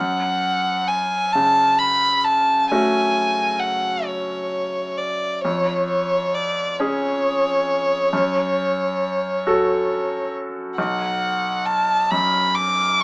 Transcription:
0, 0, Header, 1, 3, 480
1, 0, Start_track
1, 0, Key_signature, 3, "minor"
1, 0, Tempo, 916031
1, 2854, Time_signature, 12, 3, 24, 8
1, 2855, Tempo, 890208
1, 6946, End_track
2, 0, Start_track
2, 0, Title_t, "Violin"
2, 0, Program_c, 0, 40
2, 0, Note_on_c, 0, 78, 54
2, 460, Note_on_c, 0, 80, 49
2, 467, Note_off_c, 0, 78, 0
2, 694, Note_on_c, 0, 81, 55
2, 702, Note_off_c, 0, 80, 0
2, 935, Note_on_c, 0, 83, 54
2, 943, Note_off_c, 0, 81, 0
2, 1176, Note_on_c, 0, 81, 50
2, 1183, Note_off_c, 0, 83, 0
2, 1415, Note_off_c, 0, 81, 0
2, 1418, Note_on_c, 0, 80, 54
2, 1884, Note_on_c, 0, 78, 51
2, 1892, Note_off_c, 0, 80, 0
2, 2128, Note_on_c, 0, 73, 51
2, 2136, Note_off_c, 0, 78, 0
2, 2608, Note_on_c, 0, 74, 51
2, 2616, Note_off_c, 0, 73, 0
2, 2845, Note_off_c, 0, 74, 0
2, 2849, Note_on_c, 0, 73, 47
2, 3085, Note_off_c, 0, 73, 0
2, 3089, Note_on_c, 0, 73, 50
2, 3338, Note_on_c, 0, 74, 49
2, 3346, Note_off_c, 0, 73, 0
2, 3579, Note_on_c, 0, 73, 61
2, 3588, Note_off_c, 0, 74, 0
2, 5490, Note_off_c, 0, 73, 0
2, 5730, Note_on_c, 0, 78, 50
2, 6203, Note_on_c, 0, 81, 52
2, 6211, Note_off_c, 0, 78, 0
2, 6443, Note_on_c, 0, 83, 55
2, 6451, Note_off_c, 0, 81, 0
2, 6684, Note_on_c, 0, 86, 59
2, 6692, Note_off_c, 0, 83, 0
2, 6927, Note_on_c, 0, 85, 61
2, 6936, Note_off_c, 0, 86, 0
2, 6946, Note_off_c, 0, 85, 0
2, 6946, End_track
3, 0, Start_track
3, 0, Title_t, "Grand piano"
3, 0, Program_c, 1, 0
3, 0, Note_on_c, 1, 42, 34
3, 87, Control_c, 1, 64, 127
3, 708, Note_on_c, 1, 49, 27
3, 1422, Note_on_c, 1, 57, 25
3, 1422, Note_on_c, 1, 61, 24
3, 1425, Note_on_c, 1, 66, 26
3, 1851, Note_off_c, 1, 49, 0
3, 2834, Note_off_c, 1, 61, 0
3, 2835, Note_off_c, 1, 42, 0
3, 2835, Note_off_c, 1, 57, 0
3, 2836, Note_off_c, 1, 66, 0
3, 2854, Note_on_c, 1, 41, 33
3, 2864, Control_c, 1, 64, 0
3, 2939, Control_c, 1, 64, 127
3, 3582, Note_on_c, 1, 61, 29
3, 3586, Note_on_c, 1, 68, 31
3, 4274, Note_off_c, 1, 41, 0
3, 4276, Note_off_c, 1, 61, 0
3, 4278, Note_off_c, 1, 68, 0
3, 4301, Note_on_c, 1, 42, 36
3, 4305, Control_c, 1, 64, 0
3, 4402, Control_c, 1, 64, 127
3, 5022, Note_on_c, 1, 66, 31
3, 5024, Note_on_c, 1, 69, 35
3, 5707, Note_off_c, 1, 42, 0
3, 5708, Note_off_c, 1, 66, 0
3, 5709, Note_off_c, 1, 69, 0
3, 5732, Note_on_c, 1, 35, 38
3, 5734, Control_c, 1, 64, 0
3, 5825, Control_c, 1, 64, 127
3, 6451, Note_on_c, 1, 42, 30
3, 6946, Note_off_c, 1, 35, 0
3, 6946, Note_off_c, 1, 42, 0
3, 6946, End_track
0, 0, End_of_file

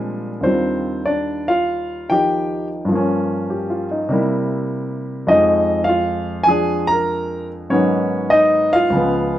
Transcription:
0, 0, Header, 1, 2, 480
1, 0, Start_track
1, 0, Key_signature, -3, "major"
1, 0, Tempo, 624350
1, 328, Time_signature, 4, 2, 24, 8
1, 1761, Tempo, 599401
1, 5121, Tempo, 612870
1, 7393, End_track
2, 0, Start_track
2, 0, Title_t, "Grand piano"
2, 0, Program_c, 0, 0
2, 0, Note_on_c, 0, 46, 64
2, 0, Note_on_c, 0, 53, 58
2, 0, Note_on_c, 0, 55, 63
2, 0, Note_on_c, 0, 56, 60
2, 0, Note_on_c, 0, 60, 56
2, 0, Note_on_c, 0, 62, 72
2, 0, Note_on_c, 0, 80, 88
2, 225, Note_off_c, 0, 80, 0
2, 314, Note_on_c, 0, 39, 44
2, 316, Note_off_c, 0, 62, 0
2, 323, Note_off_c, 0, 46, 0
2, 326, Note_off_c, 0, 55, 0
2, 327, Note_off_c, 0, 53, 0
2, 327, Note_off_c, 0, 56, 0
2, 327, Note_on_c, 0, 62, 45
2, 329, Note_off_c, 0, 60, 0
2, 335, Note_on_c, 0, 72, 73
2, 338, Note_on_c, 0, 55, 45
2, 342, Note_on_c, 0, 60, 53
2, 354, Note_on_c, 0, 65, 51
2, 780, Note_off_c, 0, 72, 0
2, 783, Note_off_c, 0, 60, 0
2, 809, Note_off_c, 0, 62, 0
2, 811, Note_on_c, 0, 74, 72
2, 820, Note_on_c, 0, 62, 58
2, 1121, Note_off_c, 0, 62, 0
2, 1137, Note_off_c, 0, 65, 0
2, 1139, Note_on_c, 0, 77, 80
2, 1149, Note_off_c, 0, 74, 0
2, 1149, Note_on_c, 0, 65, 64
2, 1590, Note_off_c, 0, 65, 0
2, 1606, Note_on_c, 0, 51, 36
2, 1611, Note_on_c, 0, 79, 76
2, 1619, Note_on_c, 0, 53, 36
2, 1630, Note_on_c, 0, 67, 56
2, 1631, Note_off_c, 0, 77, 0
2, 1631, Note_on_c, 0, 63, 42
2, 2056, Note_off_c, 0, 79, 0
2, 2066, Note_off_c, 0, 67, 0
2, 2208, Note_on_c, 0, 43, 50
2, 2225, Note_off_c, 0, 53, 0
2, 2232, Note_off_c, 0, 39, 0
2, 2234, Note_off_c, 0, 51, 0
2, 2237, Note_on_c, 0, 53, 53
2, 2244, Note_off_c, 0, 55, 0
2, 2247, Note_off_c, 0, 63, 0
2, 2266, Note_on_c, 0, 58, 46
2, 2292, Note_on_c, 0, 61, 60
2, 2730, Note_on_c, 0, 67, 40
2, 2890, Note_on_c, 0, 65, 46
2, 3035, Note_off_c, 0, 67, 0
2, 3061, Note_on_c, 0, 63, 49
2, 3139, Note_off_c, 0, 65, 0
2, 3188, Note_off_c, 0, 43, 0
2, 3199, Note_on_c, 0, 48, 60
2, 3203, Note_off_c, 0, 53, 0
2, 3213, Note_on_c, 0, 55, 54
2, 3217, Note_off_c, 0, 58, 0
2, 3229, Note_on_c, 0, 58, 49
2, 3230, Note_off_c, 0, 61, 0
2, 3239, Note_on_c, 0, 64, 55
2, 3303, Note_off_c, 0, 63, 0
2, 4146, Note_on_c, 0, 41, 55
2, 4156, Note_off_c, 0, 48, 0
2, 4158, Note_on_c, 0, 75, 77
2, 4160, Note_on_c, 0, 53, 45
2, 4163, Note_off_c, 0, 55, 0
2, 4171, Note_off_c, 0, 58, 0
2, 4173, Note_on_c, 0, 56, 54
2, 4177, Note_off_c, 0, 64, 0
2, 4178, Note_on_c, 0, 63, 55
2, 4606, Note_off_c, 0, 75, 0
2, 4606, Note_on_c, 0, 77, 84
2, 4616, Note_off_c, 0, 63, 0
2, 4644, Note_on_c, 0, 65, 63
2, 5080, Note_on_c, 0, 80, 93
2, 5091, Note_off_c, 0, 65, 0
2, 5097, Note_off_c, 0, 53, 0
2, 5109, Note_on_c, 0, 53, 48
2, 5119, Note_off_c, 0, 77, 0
2, 5120, Note_on_c, 0, 68, 76
2, 5133, Note_on_c, 0, 62, 52
2, 5424, Note_on_c, 0, 82, 97
2, 5426, Note_off_c, 0, 68, 0
2, 5440, Note_off_c, 0, 80, 0
2, 5459, Note_on_c, 0, 70, 61
2, 5884, Note_off_c, 0, 82, 0
2, 5901, Note_off_c, 0, 70, 0
2, 6070, Note_on_c, 0, 44, 53
2, 6071, Note_off_c, 0, 41, 0
2, 6071, Note_off_c, 0, 53, 0
2, 6073, Note_on_c, 0, 73, 73
2, 6077, Note_on_c, 0, 51, 48
2, 6080, Note_on_c, 0, 61, 57
2, 6081, Note_on_c, 0, 54, 48
2, 6083, Note_off_c, 0, 62, 0
2, 6084, Note_off_c, 0, 56, 0
2, 6084, Note_on_c, 0, 59, 57
2, 6518, Note_off_c, 0, 73, 0
2, 6522, Note_off_c, 0, 61, 0
2, 6542, Note_on_c, 0, 75, 90
2, 6556, Note_on_c, 0, 63, 65
2, 6861, Note_off_c, 0, 63, 0
2, 6877, Note_on_c, 0, 77, 93
2, 6887, Note_off_c, 0, 75, 0
2, 6896, Note_on_c, 0, 65, 67
2, 7013, Note_on_c, 0, 37, 50
2, 7026, Note_on_c, 0, 49, 51
2, 7031, Note_off_c, 0, 44, 0
2, 7034, Note_off_c, 0, 51, 0
2, 7036, Note_off_c, 0, 54, 0
2, 7037, Note_off_c, 0, 59, 0
2, 7039, Note_on_c, 0, 53, 48
2, 7054, Note_on_c, 0, 59, 60
2, 7393, Note_off_c, 0, 37, 0
2, 7393, Note_off_c, 0, 49, 0
2, 7393, Note_off_c, 0, 53, 0
2, 7393, Note_off_c, 0, 59, 0
2, 7393, Note_off_c, 0, 65, 0
2, 7393, Note_off_c, 0, 77, 0
2, 7393, End_track
0, 0, End_of_file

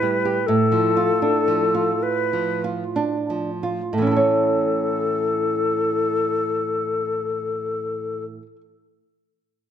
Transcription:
0, 0, Header, 1, 3, 480
1, 0, Start_track
1, 0, Key_signature, 3, "major"
1, 0, Tempo, 972447
1, 230, Time_signature, 6, 3, 24, 8
1, 721, Tempo, 1167315
1, 1201, Tempo, 1293103
1, 1681, Tempo, 1192843
1, 2641, Tempo, 1167315
1, 4036, End_track
2, 0, Start_track
2, 0, Title_t, "Flute"
2, 0, Program_c, 0, 73
2, 0, Note_on_c, 0, 71, 57
2, 228, Note_on_c, 0, 69, 61
2, 235, Note_off_c, 0, 71, 0
2, 952, Note_on_c, 0, 71, 49
2, 958, Note_off_c, 0, 69, 0
2, 1202, Note_off_c, 0, 71, 0
2, 1685, Note_on_c, 0, 69, 36
2, 3437, Note_off_c, 0, 69, 0
2, 4036, End_track
3, 0, Start_track
3, 0, Title_t, "Nylon-string guitar"
3, 0, Program_c, 1, 24
3, 0, Note_on_c, 1, 45, 45
3, 0, Note_on_c, 1, 64, 34
3, 12, Note_on_c, 1, 55, 31
3, 72, Note_off_c, 1, 64, 0
3, 125, Note_on_c, 1, 67, 34
3, 189, Note_off_c, 1, 55, 0
3, 209, Note_off_c, 1, 45, 0
3, 235, Note_off_c, 1, 67, 0
3, 238, Note_on_c, 1, 45, 39
3, 355, Note_on_c, 1, 53, 32
3, 478, Note_on_c, 1, 65, 33
3, 546, Note_off_c, 1, 53, 0
3, 603, Note_on_c, 1, 62, 30
3, 674, Note_off_c, 1, 65, 0
3, 728, Note_on_c, 1, 53, 29
3, 793, Note_off_c, 1, 62, 0
3, 838, Note_on_c, 1, 65, 32
3, 907, Note_off_c, 1, 53, 0
3, 1079, Note_on_c, 1, 53, 26
3, 1202, Note_off_c, 1, 65, 0
3, 1206, Note_on_c, 1, 65, 30
3, 1276, Note_off_c, 1, 53, 0
3, 1324, Note_on_c, 1, 62, 30
3, 1399, Note_off_c, 1, 65, 0
3, 1450, Note_on_c, 1, 53, 27
3, 1523, Note_off_c, 1, 62, 0
3, 1573, Note_on_c, 1, 65, 26
3, 1639, Note_off_c, 1, 53, 0
3, 1670, Note_off_c, 1, 45, 0
3, 1683, Note_off_c, 1, 65, 0
3, 1684, Note_on_c, 1, 45, 29
3, 1704, Note_on_c, 1, 52, 26
3, 1720, Note_on_c, 1, 61, 25
3, 1740, Note_on_c, 1, 64, 25
3, 1759, Note_on_c, 1, 69, 24
3, 1777, Note_off_c, 1, 64, 0
3, 1779, Note_on_c, 1, 73, 25
3, 3489, Note_off_c, 1, 45, 0
3, 3510, Note_off_c, 1, 52, 0
3, 3526, Note_off_c, 1, 61, 0
3, 3566, Note_off_c, 1, 69, 0
3, 3586, Note_off_c, 1, 73, 0
3, 4036, End_track
0, 0, End_of_file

